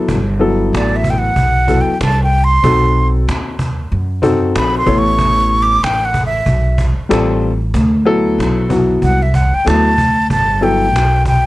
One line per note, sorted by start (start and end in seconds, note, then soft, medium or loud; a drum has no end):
0.00 0.16 F#3 medium
0.00 0.16 B3 medium
0.00 0.16 E4 medium
0.00 0.16 A4 medium
0.08 0.69 G1 loud
0.08 cajon bass loud
0.39 1.30 F#3 medium
0.39 1.30 B3 medium
0.39 1.31 E4 medium
0.39 1.31 A4 medium
0.39 cajon slap soft
0.60 cajon slap soft
0.73 1.33 A1 medium
0.73 0.98 D5 medium
0.73 cajon slap loud
0.93 1.12 E5 medium
0.93 cajon slap soft
1.04 cajon bass medium
1.10 1.20 G5 medium
1.18 1.83 F#5 medium
1.24 cajon slap soft
1.36 1.84 B1 medium
1.36 cajon bass medium
1.55 cajon slap soft
1.67 1.92 F#3 medium
1.67 1.92 B3 medium
1.67 1.92 E4 medium
1.67 1.93 A4 medium
1.67 cajon bass medium
1.81 2.01 G5 medium
1.87 muted upright bass stroke soft
1.87 cajon slap soft
2.01 2.61 C2 medium
2.01 2.21 A5 medium
2.01 cajon slap loud
2.23 2.46 G5 medium
2.31 cajon slap soft
2.44 3.07 C6 loud
2.51 cajon slap soft
2.63 3.24 B1 loud
2.63 3.54 C4 medium
2.63 3.54 D#4 medium
2.63 3.54 F#4 medium
2.63 3.55 A4 medium
2.63 cajon bass loud
2.96 cajon slap soft
3.15 cajon slap soft
3.28 3.88 D#2 medium
3.28 cajon slap loud
3.47 cajon slap soft
3.59 cajon bass loud
3.78 cajon slap soft
3.92 4.52 F#2 medium
3.92 cajon slap soft
4.10 cajon slap soft
4.22 4.86 C4 medium
4.22 4.87 D#4 medium
4.22 4.87 F#4 medium
4.22 4.85 A4 medium
4.22 cajon bass loud
4.42 cajon slap soft
4.55 4.86 A#1 medium
4.55 4.76 B5 medium
4.55 cajon slap loud
4.78 5.00 C6 medium
4.86 5.79 A1 loud
4.86 5.90 B3 medium
4.86 5.90 E4 medium
4.86 5.90 A4 medium
4.86 5.90 C#5 medium
4.86 cajon bass medium
4.98 5.64 C#6 loud
5.05 cajon slap soft
5.19 cajon bass loud
5.51 cajon slap soft
5.62 5.85 D6 medium
5.70 cajon slap soft
5.83 6.44 A1 medium
5.83 6.07 G5 medium
5.83 cajon slap loud
6.02 6.26 F#5 medium
6.02 cajon slap soft
6.14 cajon bass loud
6.26 6.86 E5 medium
6.34 cajon slap soft
6.46 6.95 B1 medium
6.46 cajon bass medium
6.66 cajon slap soft
6.78 cajon bass loud
6.98 muted upright bass stroke soft
6.98 cajon slap soft
7.09 7.71 A1 medium
7.09 7.49 G3 medium
7.09 7.49 C4 medium
7.09 7.50 F4 medium
7.09 7.50 A4 medium
7.09 cajon slap loud
7.41 cajon slap soft
7.61 cajon slap soft
7.74 8.35 D2 loud
7.74 cajon bass loud
7.93 cajon slap soft
8.05 8.68 F#3 loud
8.05 8.68 B3 medium
8.05 8.69 E4 medium
8.05 8.97 A4 loud
8.05 cajon slap soft
8.26 cajon slap soft
8.38 8.99 B1 medium
8.38 cajon slap loud
8.58 cajon slap soft
8.69 9.17 F#3 medium
8.69 9.17 B3 medium
8.69 9.17 E4 medium
8.69 9.17 F#4 medium
8.69 cajon bass medium
8.90 cajon slap soft
9.02 9.50 C2 medium
9.02 9.24 F#5 medium
9.02 cajon bass medium
9.22 9.37 E5 medium
9.22 cajon slap soft
9.34 9.56 F#5 medium
9.34 cajon bass loud
9.53 9.69 G5 medium
9.53 muted upright bass stroke soft
9.53 cajon slap soft
9.65 10.27 D2 loud
9.65 9.89 F#3 medium
9.65 9.89 B3 medium
9.65 9.90 E4 medium
9.65 9.90 A4 medium
9.65 10.31 A5 medium
9.65 cajon slap loud
9.85 cajon slap soft
9.98 cajon bass loud
10.18 cajon slap soft
10.30 10.94 G1 medium
10.30 10.65 A5 loud
10.30 cajon bass loud
10.61 10.85 F#3 medium
10.61 10.85 B3 medium
10.61 10.86 E4 medium
10.61 10.86 A4 medium
10.61 11.26 G5 medium
10.61 cajon slap soft
10.82 cajon slap soft
10.94 11.46 B1 medium
10.94 cajon slap loud
11.25 11.46 G5 medium
11.25 cajon bass loud